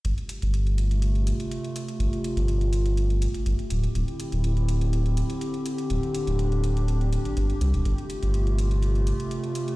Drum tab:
HH |xxxxxxxxxxxxxxxx|xxxxxxxxxxxxxxxx|xxxxxxxxxxxxxxxx|xxxxxxxxxxxxxxxx|

HH |xxxxxxxxxxxxxxxx|